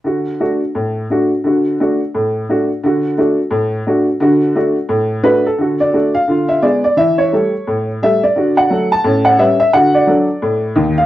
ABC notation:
X:1
M:4/4
L:1/8
Q:"Swing" 1/4=174
K:D
V:1 name="Upright piano"
z8 | z8 | z8 | z6 B A- |
A d2 =f2 e d d | e c4 z e d- | d f2 a2 f e e | f d4 z2 =f |]
V:2 name="Upright piano"
[D,F]2 [A,DF]2 A,,2 [A,DF]2 | [D,F]2 [A,DF]2 A,,2 [A,DF]2 | [D,F]2 [A,DF]2 A,,2 [A,DF]2 | [D,F]2 [A,DF]2 A,,2 [A,DF]2 |
[D,F]2 [A,DF]2 [D,=F]2 [_A,B,_A]2 | E,2 [G,A,A]2 A,,2 [G,A,A]2 | [D,F]2 [F,A,A]2 [A,,C]2 [G,CB]2 | [D,F]2 [F,DA]2 A,,2 [_E,,_E,]2 |]